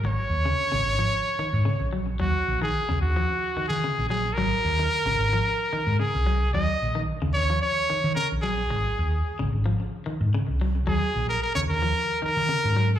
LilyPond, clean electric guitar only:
\new Staff \with { instrumentName = "Clean electric guitar" } { \clef bass \time 4/4 \key ees \dorian \tempo 4 = 111 r8. des8 des8 f8 r16 ees8 des8 ges8 | ges8 r16 ees8 des8 f8 r16 ees8 des8 ges8 | ges8 r16 ees8 des8 f8 r16 ees8 des8 ges8 | ges8 r16 ees8 des8 f8 r16 ees8 des8 ges8 |
r4 r16 des8 f8 r16 ees8 des8 ges8 | ges8 r8. des8 f8 r16 ees8 des8 ges8 | }